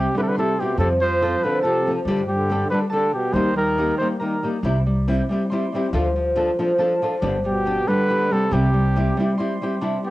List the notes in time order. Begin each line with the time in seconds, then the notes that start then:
Already playing: C3 G3 G4 C6
0.14 D3 G3 C4 E4 G4 B4
0.20 C3 A4
0.27 D3 B4
0.34 C3 G3 C4 E4 G4 A4 C6
0.58 B2 G3 C4 E4 G4
0.78 F2 C3 F3 C4 F4 A4
1.01 F3 C5
1.21 F3 C4 F4 A4
1.43 D3 F3 C4 F4 A4 B4
1.62 C3 F3 C4 F4 A4 A5
1.85 F3 C4 F4 A4
2.05 G2 D3 G3 D4 G4 A4
2.28 D3 G3 G4
2.49 G3 D4 G4 A4
2.70 D3 G3 D4 G4 B4
2.74 A4
2.90 D3 G3 D4 G4 A4 A5
2.94 A4
3.12 B2 G3 G4
3.32 D#2 D#3 G3 A#3 D#4 G4 C5
3.55 D#3 G3 A#4
3.78 G3 A#3 D#4 G4
3.98 D#3 G3 A#3 D#4 C5
4.02 G4
4.19 D#3 G3 A#3 D#4 G4 A#4 A#5
4.43 G3 A#3 D#4 G4
4.62 C2 C3 G3 C4 E4 G4
4.86 G3
5.08 G3 C4 E4 G4
5.29 G3 C4 E4 G4
5.50 G3 C4 E4 G4 C6
5.72 G3 C4 E4 G4
5.93 D2 D3 F3 D4 F4 A4
6.16 F3
6.36 F3 D4 F4 A4
6.59 F3 D4 F4 A4
6.78 F3 D4 F4 A4 A5
7.02 F3 D4 F4 A4
7.22 G1 G2 D3 G3 B3 D4 G4
7.45 B2 G3 G4
7.65 G3 B3 D4 G4
7.88 D3 G3 B3 D4 G4 B4
8.08 G3 B3 D4 G4 B5
8.31 C3 G3 B3 D4 G4 A4
8.51 C2 C3 G3 C4 E4 G4
8.74 G3
8.95 G3 C4 E4 G4
9.17 G3 C4 E4 G4
9.38 G3 C4 E4 G4 C6
9.61 G3 C4 E4 G4
9.81 C3 G3 D4 E4 G4
10.04 B3 D4 G4